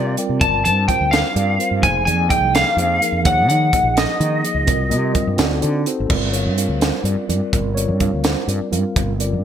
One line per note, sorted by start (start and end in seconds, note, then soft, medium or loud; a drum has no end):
0.00 0.15 C3 medium
0.00 0.13 G3 medium
0.00 0.13 C4 medium
0.00 0.14 F4 medium
0.00 0.14 A#4 medium
0.00 0.14 D5 medium
0.00 0.15 D5 medium
0.07 0.17 F5 medium
0.17 0.41 G3 medium
0.17 0.41 C4 medium
0.17 0.42 F4 medium
0.17 0.42 A#4 medium
0.17 0.42 D5 medium
0.17 0.40 G5 medium
0.17 closed hi-hat medium
0.29 0.42 C3 medium
0.41 0.67 G1 medium
0.41 0.61 G3 medium
0.41 0.61 C4 medium
0.41 0.62 F4 medium
0.41 0.62 A#4 medium
0.41 0.62 D5 medium
0.41 0.63 A5 loud
0.41 0.64 A5 loud
0.41 kick loud
0.41 closed hi-hat medium
0.65 0.86 G2 medium
0.65 0.85 G3 medium
0.65 0.85 C4 medium
0.65 0.85 F4 soft
0.65 0.86 A#4 medium
0.65 0.86 C5 medium
0.65 0.88 A5 loud
0.65 0.87 A5 medium
0.65 closed hi-hat medium
0.88 1.27 G3 medium
0.88 1.27 C4 medium
0.88 1.28 F4 medium
0.88 1.28 A#4 medium
0.88 1.28 C5 medium
0.88 1.10 G5 medium
0.88 1.12 G5 medium
0.88 kick medium
0.88 closed hi-hat medium
1.01 1.22 D2 medium
1.11 1.85 F5 loud
1.11 1.79 F5 medium
1.11 snare loud
1.11 closed hi-hat medium
1.34 1.57 G2 loud
1.34 1.55 G3 medium
1.34 1.55 C4 medium
1.34 1.55 F4 medium
1.34 1.55 A#4 medium
1.34 1.56 D5 medium
1.34 closed hi-hat medium
1.58 1.83 G3 medium
1.58 1.83 C4 medium
1.58 1.83 F4 medium
1.58 1.83 A#4 medium
1.58 1.82 C5 medium
1.58 closed hi-hat soft
1.71 1.84 G2 medium
1.81 2.08 F1 medium
1.81 2.02 F3 medium
1.81 2.02 A#3 medium
1.81 2.02 D#4 medium
1.81 2.02 G#4 medium
1.81 2.03 C5 medium
1.81 2.04 G#5 loud
1.81 2.06 G#5 medium
1.81 kick loud
1.81 closed hi-hat medium
2.05 2.28 F2 medium
2.05 2.25 F3 medium
2.05 2.26 A#3 medium
2.05 2.26 D#4 medium
2.05 2.26 G#4 medium
2.05 2.26 D5 medium
2.05 2.30 G#5 loud
2.05 2.29 G#5 medium
2.05 closed hi-hat medium
2.29 2.69 F3 medium
2.29 2.69 A#3 medium
2.29 2.69 D#4 medium
2.29 2.69 G#4 medium
2.29 2.70 D#5 medium
2.29 2.55 G5 medium
2.29 2.53 G5 medium
2.29 kick medium
2.29 closed hi-hat medium
2.41 2.63 C2 medium
2.55 3.28 F5 loud
2.55 3.22 F5 medium
2.55 snare loud
2.55 closed hi-hat medium
2.77 2.99 F2 loud
2.77 2.97 F3 medium
2.77 2.97 A#3 medium
2.77 2.97 D#4 medium
2.77 2.97 G#4 medium
2.77 2.98 C5 medium
2.77 closed hi-hat medium
3.01 3.23 F3 medium
3.01 3.23 A#3 medium
3.01 3.24 D#4 medium
3.01 3.24 G#4 medium
3.01 3.26 A#4 medium
3.01 closed hi-hat medium
3.12 3.26 F2 medium
3.24 3.49 D#2 medium
3.24 3.44 F3 medium
3.24 3.45 A#3 medium
3.24 3.45 D#4 medium
3.24 3.45 G#4 medium
3.24 3.46 C#5 medium
3.24 3.48 F#5 medium
3.24 3.49 F#5 medium
3.24 kick loud
3.24 closed hi-hat medium
3.49 3.70 D#3 medium
3.49 3.69 F3 medium
3.49 3.69 A#3 medium
3.49 3.69 D#4 medium
3.49 3.69 G#4 medium
3.49 3.70 C#5 medium
3.49 3.98 F#5 medium
3.49 3.95 F#5 medium
3.49 closed hi-hat medium
3.72 4.12 F3 medium
3.72 4.12 A#3 medium
3.72 4.12 D#4 medium
3.72 4.13 G#4 medium
3.72 4.13 D#5 medium
3.72 kick medium
3.72 closed hi-hat medium
3.83 4.05 A#1 medium
3.97 5.59 D#5 medium
3.97 5.60 D#5 medium
3.97 snare loud
3.97 closed hi-hat medium
4.20 4.42 D#3 medium
4.20 4.40 F3 medium
4.20 4.40 A#3 medium
4.20 4.40 D#4 medium
4.20 4.40 G#4 medium
4.20 4.41 D#5 medium
4.20 closed hi-hat medium
4.43 4.67 F3 medium
4.43 4.67 A#3 medium
4.43 4.68 D#4 medium
4.43 4.68 G#4 medium
4.43 4.66 D#5 medium
4.43 closed hi-hat medium
4.55 4.68 C#2 medium
4.66 4.92 C2 medium
4.66 4.87 G3 medium
4.66 4.87 C4 medium
4.66 4.87 F4 medium
4.66 4.87 A#4 medium
4.66 4.87 D#5 medium
4.66 kick loud
4.66 closed hi-hat medium
4.89 5.13 C3 loud
4.89 5.10 G3 medium
4.89 5.10 C4 medium
4.89 5.10 F4 medium
4.89 5.10 A#4 medium
4.89 5.11 D#5 medium
4.89 closed hi-hat medium
5.12 5.37 G3 medium
5.12 5.35 C4 medium
5.12 5.38 F4 medium
5.12 5.38 A#4 medium
5.12 5.38 D#5 medium
5.12 kick medium
5.12 closed hi-hat medium
5.27 5.38 G2 medium
5.36 5.60 D2 medium
5.36 5.57 C4 medium
5.36 5.58 D#4 medium
5.36 5.58 F#4 medium
5.36 5.58 A4 medium
5.36 5.59 D5 medium
5.36 snare loud
5.36 closed hi-hat medium
5.61 5.85 D3 loud
5.61 5.81 C4 medium
5.61 5.82 D#4 medium
5.61 5.82 F#4 medium
5.61 5.82 A4 medium
5.61 5.82 D5 medium
5.61 closed hi-hat medium
5.85 6.07 C4 medium
5.85 6.10 D#4 medium
5.85 6.10 F#4 medium
5.85 6.05 A4 medium
5.85 6.11 C5 medium
5.85 closed hi-hat medium
6.00 6.10 G#1 medium
6.06 6.47 G1 medium
6.06 6.29 G3 medium
6.06 6.29 C4 medium
6.06 6.29 F4 medium
6.06 6.09 A4 soft
6.06 6.29 A#4 medium
6.06 6.30 D5 medium
6.06 kick loud
6.06 crash medium
6.32 6.53 G3 medium
6.32 6.53 C4 soft
6.32 6.53 F4 medium
6.32 6.54 A#4 medium
6.32 6.77 C#5 medium
6.32 6.54 F5 medium
6.32 closed hi-hat medium
6.46 6.67 G2 medium
6.56 6.96 G3 medium
6.56 6.97 C4 medium
6.56 6.97 F4 medium
6.56 6.97 A#4 medium
6.56 6.97 F5 medium
6.56 closed hi-hat medium
6.69 6.91 D2 medium
6.80 7.04 C5 medium
6.80 snare loud
6.80 closed hi-hat medium
7.03 7.15 G2 medium
7.03 7.24 G3 medium
7.03 7.24 C4 medium
7.03 7.25 F4 medium
7.03 7.24 A#4 medium
7.03 7.25 D5 medium
7.03 closed hi-hat medium
7.16 muted fretless electric bass stroke soft
7.28 7.40 G2 medium
7.28 7.68 G3 medium
7.28 7.68 C4 medium
7.28 7.68 F4 medium
7.28 7.52 A#4 medium
7.28 7.69 D5 medium
7.28 closed hi-hat medium
7.53 7.89 G1 loud
7.53 7.75 A#4 medium
7.53 kick medium
7.53 closed hi-hat medium
7.75 7.96 G3 medium
7.75 7.96 C4 soft
7.75 7.96 F4 medium
7.75 7.97 A#4 medium
7.75 8.20 C#5 loud
7.75 7.97 D5 medium
7.75 closed hi-hat medium
7.88 8.10 G2 medium
7.99 8.39 G3 medium
7.99 8.39 C4 medium
7.99 8.40 F4 medium
7.99 8.40 A#4 medium
7.99 8.40 F5 medium
7.99 kick medium
7.99 closed hi-hat medium
8.13 8.34 D2 medium
8.24 8.48 C5 medium
8.24 snare loud
8.24 closed hi-hat medium
8.47 8.59 G2 medium
8.47 8.68 G3 medium
8.47 8.68 C4 medium
8.47 8.68 F4 medium
8.47 8.68 A#4 medium
8.47 8.68 D5 medium
8.47 closed hi-hat medium
8.61 muted fretless electric bass stroke soft
8.71 8.83 G2 medium
8.71 9.11 G3 medium
8.71 9.11 C4 medium
8.71 9.11 F4 medium
8.71 9.11 A#4 medium
8.71 9.12 F5 medium
8.71 closed hi-hat medium
8.96 9.35 G1 loud
8.96 kick loud
8.96 closed hi-hat medium
9.19 9.39 G3 medium
9.19 9.39 C4 medium
9.19 9.39 F4 medium
9.19 9.40 A#4 medium
9.19 9.40 D5 medium
9.19 closed hi-hat medium
9.33 9.44 G2 medium